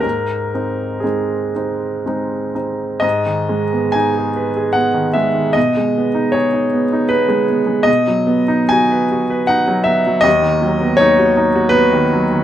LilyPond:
<<
  \new Staff \with { instrumentName = "Grand piano" } { \time 3/4 \key aes \major \tempo 4 = 76 bes'4 aes'4. r8 | \key gis \minor dis''4 gis''4 fis''8 e''8 | dis''4 cis''4 b'4 | dis''4 gis''4 fis''8 e''8 |
dis''4 cis''4 b'4 | }
  \new Staff \with { instrumentName = "Grand piano" } { \time 3/4 \key aes \major aes,8 <c' ees'>8 <aes c' ees'>8 <c' ees'>8 <aes c' ees'>8 <c' ees'>8 | \key gis \minor gis,16 dis16 gis16 b16 dis'16 gis'16 b'16 gis'16 b16 dis16 gis16 dis16 | b,16 gis16 b16 dis'16 gis'16 dis'16 b16 dis'16 b16 gis16 b16 gis16 | b,16 fis16 b16 dis'16 fis'16 b'16 fis'16 b'16 dis'16 fis16 b16 fis16 |
dis,16 dis16 fis16 b16 dis'16 fis'16 dis'16 fis'16 b16 dis16 fis16 dis16 | }
>>